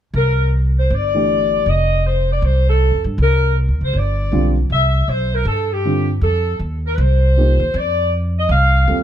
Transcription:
0.14 C2 A#4
0.78 C5
0.90 G1 D5
1.14 E3 A3 D4 G4
1.66 F1 D#5
2.06 C5
2.32 D5
2.42 C2 C5
2.70 A4
2.92 F2
3.04 G2
3.18 C2 A#4
3.68 D2
3.81 C#2 C5
3.93 G1 D5
4.32 B1 D3 G3 C4 F4
4.70 C2 E5
5.08 B1 C5
5.34 A#4
5.45 G2 A4
5.72 G4
5.85 D3 G3 C4 F4
6.21 F2 A4
6.59 D#2
6.86 A#4
6.94 C2 B4
6.99 C5
7.37 F3 A#3 D#4 G4
7.60 D#2
7.74 F2 D5
8.38 D#5
8.49 C2 F5
8.87 D#2 G3 C4 F4 A4

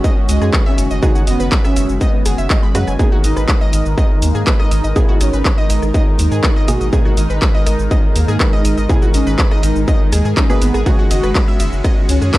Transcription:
Already playing: G#2 D#3 G#3 C#4 F#4
0.04 D#5 D#6, kick, shaker
0.29 C#2 G#3 D#5 D#6, open hi-hat, shaker
0.41 F#2 G#4 G#5, cross-stick, shaker
0.53 B4 B5, kick, clap, shaker
0.66 C#4 E5 E6
0.78 F#1, open hi-hat, shaker
0.91 F#1 D#5 D#6, shaker
1.03 C#3 G#3 D#4 F#4 G#4 G#5, kick, cross-stick, shaker
1.15 F#4 F#5, shaker
1.27 F#1 B3 D#5 D#6, open hi-hat, shaker
1.40 F#1 B4 B5, shaker
1.52 B4 B5, kick, clap, shaker
1.64 C#4 E5 E6, cross-stick, shaker
1.76 F#1 E5 E6, open hi-hat, shaker
1.89 F#1, shaker
2.01 B3 D#5 D#6, kick, shaker
2.26 F#1 G#4 G#5, cross-stick, open hi-hat, shaker
2.38 F#1 E5 E6, shaker
2.50 G#3 D#4 D#5, kick, clap, shaker
2.63 B5
2.75 F#2 C#3 F#3 G#3 F#4 B4 B5, open hi-hat, shaker
2.87 F#1 G#5 G#6, cross-stick, shaker
2.99 G#2 B2 D#3 G#3 A#3 D#4 G#4 A#4 G#5, kick, shaker
3.12 F#4 F#5
3.24 G#1 D#4 D#5 D#6, open hi-hat, shaker
3.37 G#1 B4 B5, cross-stick, shaker
3.48 B4 B5, kick, clap, shaker
3.61 D#5 D#6
3.73 G#1 D#5 D#6, open hi-hat, shaker
3.86 G#1, shaker
3.98 D#5 D#6, kick, cross-stick, shaker
4.22 D#2 A#3, open hi-hat, shaker
4.35 G#2 G#4 G#5, shaker
4.47 B4 B5, kick, clap, shaker
4.60 D#4 D#5 D#6, cross-stick
4.71 G#1 D#5 D#6, open hi-hat, shaker
4.84 G#1 D#5 D#6, shaker
4.96 B2 A#3 E4 G#4 G#5, kick, shaker
5.09 F#4 F#5
5.21 G#1 C#4 D#5 D#6, cross-stick, open hi-hat, shaker
5.33 G#1 B4 B5, shaker
5.45 B4 B5, kick, clap, shaker
5.58 D#4 D#5 D#6
5.70 G#1 D#5 D#6, open hi-hat, shaker
5.82 G#1, cross-stick, shaker
5.94 D#4 D#5 D#6, kick, shaker
6.19 D#2, open hi-hat, shaker
6.32 G#2 G#4 G#5, shaker
6.43 D#4 B4 B5, kick, cross-stick, clap, shaker
6.56 D#5 D#6
6.68 G#1 B2 A#3 F#4 G#4 D#5 D#6, open hi-hat, shaker
6.81 G#1 D#5 D#6, shaker
6.93 B2 A#3 D#4 G#4 G#5, kick, shaker
7.05 F#4 F#5, cross-stick
7.17 G#1 D#4 D#5 D#6, open hi-hat, shaker
7.30 G#1 B4 B5, shaker
7.42 B4 B5, kick, clap, shaker
7.55 D#5 D#6
7.66 G#1 D#5 D#6, cross-stick, open hi-hat, shaker
7.79 G#1, shaker
7.91 D#5 D#6, kick, shaker
8.16 D#2 A#3, open hi-hat, shaker
8.28 G#2 G#4 G#5, cross-stick, shaker
8.40 B4 B5, kick, clap, shaker
8.53 D#4 D#5 D#6
8.65 G#1 D#5 D#6, open hi-hat, shaker
8.77 G#1 D#5 D#6, shaker
8.89 B2 A#3 E4 G#4 G#5, kick, cross-stick, shaker
9.02 F#4 F#5, shaker
9.14 G#1 C#4 D#5 D#6, open hi-hat, shaker
9.27 G#1 B4 B5, shaker
9.39 B4 B5, kick, clap, shaker
9.51 D#4 D#5 D#6, cross-stick
9.63 G#1 D#5 D#6, open hi-hat, shaker
9.76 G#1, shaker
9.88 D#4 D#5 D#6, kick, shaker
10.12 D#2 G#4 G#5, cross-stick, open hi-hat, shaker
10.25 G#2 G#4 G#5, shaker
10.37 C#4 D#4 D#5, kick, clap, shaker
10.50 B2 A#3 G#4 B4 B5, shaker
10.62 G#1 B3, open hi-hat, shaker
10.74 G#1 G#4 G#5, cross-stick, shaker
10.86 C#3 G#3 C#4 F#4 G#4 G#5, kick, ride, shaker
10.99 F#4 F#5
11.11 F#1 F#4 D#5 D#6, open hi-hat, ride, shaker
11.23 F#1 B4 B5, cross-stick, shaker
11.35 B4 B5, kick, clap, ride, shaker
11.48 E5 E6
11.60 F#1 E5 E6, open hi-hat, ride, shaker
11.73 F#1, shaker
11.85 D#5 D#6, kick, cross-stick, ride, shaker
12.09 C#2 C#4, open hi-hat, ride, shaker
12.22 F#2 G#4 G#5, shaker
12.34 B4 B5, kick, clap, ride, shaker

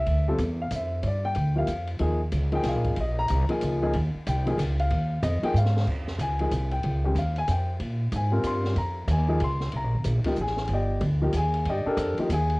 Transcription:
0.00 E5
0.06 D2, ride
0.28 G3 C4 F4 A4
0.38 E2, hi-hat pedal, ride
0.62 F5
0.71 F2, hi-hat pedal, ride
0.76 E5
1.02 G2 C#5, ride
1.07 D5
1.25 G5
1.35 D2, ride
1.55 F3 A#3 E4 G4 F5
1.67 F2, hi-hat pedal, ride
1.87 ride
1.99 D#2 F3 A#3 D#4 G#4, ride
2.32 C#2, hi-hat pedal, ride
2.52 F3 A#3 D#4 G#4 G5, ride
2.63 C2, snare, hi-hat pedal, ride
2.69 F5
2.75 A#1
2.84 G#1, kick, ride
2.96 A#1, ride
3.00 D#5
3.19 A#5
3.28 C2, hi-hat pedal, ride
3.49 F3 A#3 D#4 G#4 G#5, muted upright bass stroke, ride
3.61 C#2, hi-hat pedal, ride
3.82 F3 A#3 D#4 G#4
3.94 D#2, ride
4.15 muted upright bass stroke
4.27 C2 G5, hi-hat pedal, ride
4.46 F3 A#3 D#4 G#4, ride
4.58 C#2, hi-hat pedal, ride
4.79 F5, ride
4.90 D#2, ride
5.23 F2 D#5, hi-hat pedal, ride
5.43 F3 A#3 D#4 G#4 G5, muted upright bass stroke, ride
5.54 G#2 F5, hi-hat pedal
5.65 snare
5.77 snare
5.87 F2, kick, crash
6.07 snare
6.19 C#2 G#5, hi-hat pedal, ride
6.39 F3 A#3 D#4 G#4, ride
6.51 C2, hi-hat pedal, ride
6.71 G5, ride
6.83 C#2, ride
7.04 D#3 G#3 C#4 G4
7.15 D#2 F5, hi-hat pedal, ride
7.36 G#5, ride
7.48 F2 G5, hi-hat pedal, ride
7.80 A#2, ride
8.12 G#2 G#5, hi-hat pedal, ride
8.31 G3 C4 F4 A#4
8.43 G2 C6, hi-hat pedal, ride
8.65 snare
8.76 F2 A#5, ride
9.08 D#2 G#5, hi-hat pedal, ride
9.28 F3 A#3 D#4 G#4
9.40 C#2 C6, ride
9.61 snare
9.72 C2, ride
9.76 A#5
9.84 A#1
9.95 G1
10.04 A#1, hi-hat pedal, ride
10.24 F3 A#3 D#4 G4, muted upright bass stroke, kick, ride
10.36 A1, hi-hat pedal
10.41 G#4 G#5
10.47 snare
10.57 snare
10.68 G1, ride
10.73 G4 D5 D#5 G5
11.01 D2, ride
11.22 F3 A#3 D#4 G4
11.33 D#2 G#5, hi-hat pedal, ride
11.38 G#4
11.54 ride
11.65 G2, ride
11.69 G4 D5 D#5 G5
11.86 D4 G4 A4 A#4, muted upright bass stroke
11.97 F2, hi-hat pedal, ride
12.17 F3 A#3 D#4 G4, muted upright bass stroke, ride
12.29 D#2 G#5, hi-hat pedal, ride
12.34 G#4
12.49 ride

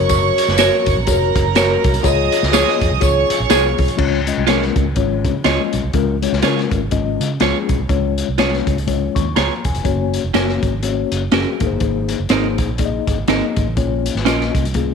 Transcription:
Already playing: F#1 F#3 C#4 F#4 A#4 C#5 C#6
0.09 kick, closed hi-hat, tambourine
0.38 closed hi-hat
0.48 F#1, snare
0.58 F#4 A#4 C#5, snare, closed hi-hat, tambourine
0.86 F#1, kick, closed hi-hat
0.97 A#1
1.07 F1 F#4 G#4 A#4 C#5 A#5, kick, closed hi-hat, tambourine
1.14 A#4
1.35 F#1, kick, closed hi-hat
1.55 F#4 A#4 C#5, snare, closed hi-hat, tambourine
1.84 C2, kick, closed hi-hat
1.94 closed hi-hat
2.03 C#2 F3 C#4 F4 G#4 C#5 D#5 D#6, kick, closed hi-hat, tambourine
2.32 closed hi-hat
2.43 C#2, snare
2.52 F4 G#4 C#5, snare, closed hi-hat, tambourine
2.68 snare
2.81 F2, kick, closed hi-hat
2.91 C2
3.00 C#2 F4 G#4 C#5 C#6, kick, closed hi-hat, tambourine
3.30 muted fingered electric bass stroke, closed hi-hat
3.40 A#1
3.50 C2 D#4 F4 G#4 C#5, snare, closed hi-hat, tambourine
3.55 F4
3.78 C2, kick, open hi-hat
3.88 closed hi-hat
3.97 C#2 G#3 C#4 F4 C#5, kick, crash
4.27 G#3 C#4 F4 D#5, closed hi-hat
4.37 C2
4.47 G#3 C#4 F4 G#4 A#4 C#5, snare, closed hi-hat
4.62 snare
4.76 C#2, kick, closed hi-hat
4.96 G#1 G#3 C#4 F4 C#5, kick, closed hi-hat
5.24 C#3, kick, closed hi-hat
5.44 C#2 G#3 C#4 F4 G#4 C#5 D#5, snare, closed hi-hat
5.73 B1, closed hi-hat
5.84 C2
5.93 C#2 G#3 C#4 F4 A#4, kick, closed hi-hat
6.22 G#3 C#4 F4 C#5, closed hi-hat
6.32 C#2, snare
6.42 C#3 G#3 C#4 E4 F4 G#4 A#4 C#5, snare, closed hi-hat
6.49 F4
6.58 snare
6.71 G#1, kick, closed hi-hat
6.91 G#1 G#3 C#4 F4 D#5, kick, closed hi-hat
7.20 C#3, closed hi-hat
7.40 C#2 G#3 C#4 F4 G#4 C#5, snare, closed hi-hat
7.69 B1, kick, closed hi-hat
7.80 C2
7.89 C#2 G#3 C#4 F4 C#5, kick, closed hi-hat
8.18 closed hi-hat
8.29 C2
8.38 G#3 C#4 F4 G#4 C#5, snare, closed hi-hat
8.53 snare
8.67 C#2, kick, closed hi-hat
8.78 closed hi-hat
8.87 G#3 C#4 F4 C#5, kick, closed hi-hat
9.15 D#2 C#6, kick, closed hi-hat
9.36 C#2 F4 G#4 C#5 A#5, snare, closed hi-hat
9.65 E1 G#5, kick, closed hi-hat
9.75 F1, closed hi-hat
9.84 F#1 A#3 C#4 F#4 C#5, kick, closed hi-hat
10.14 closed hi-hat
10.24 F1
10.34 F#1 A#3 C#4 F#4 A#4 C#5, snare, closed hi-hat
10.49 snare
10.63 G#1, kick, closed hi-hat
10.83 A#3 C#4 F#4 C#5, closed hi-hat
11.12 F#1, closed hi-hat
11.31 F#1 A#3 C#4 F#4 G#4 A#4, snare, closed hi-hat
11.60 G#1 A#3 D#4 G#4 A#4, kick, closed hi-hat
11.67 G1 C5
11.80 G#1, kick, closed hi-hat
12.09 closed hi-hat
12.20 F#1
12.29 G#1 A#3 C4 D#4 G#4 A#4 C5, snare, closed hi-hat
12.58 A#1, kick, closed hi-hat
12.78 A#3 D#4 G#4 D5, kick, closed hi-hat
12.85 D#5
13.07 G#1, kick, closed hi-hat
13.28 G#1 A#3 C4 D#4 G#4 A#4 D#5, snare, closed hi-hat
13.56 G#1, kick, closed hi-hat
13.66 A1
13.77 A#1 A#3 C#4 F4 C#5, kick, closed hi-hat
14.06 closed hi-hat
14.15 G#1, snare
14.25 A#1 A#3 C#4 F4 A#4 D#5, snare, closed hi-hat
14.41 snare
14.55 C2, kick, closed hi-hat
14.65 closed hi-hat
14.74 A#3 C#4 F4 G#4, kick, closed hi-hat

